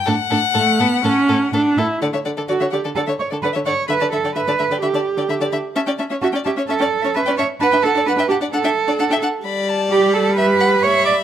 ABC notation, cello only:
X:1
M:4/4
L:1/8
Q:1/4=129
K:D
V:1 name="Cello"
A,, A,, A,, A,, A,, A,, A,, A,, | z2 F G A c B c | B A B2 G3 z | z2 F G A2 B c |
B A B G A3 z | z2 G A B2 c d |]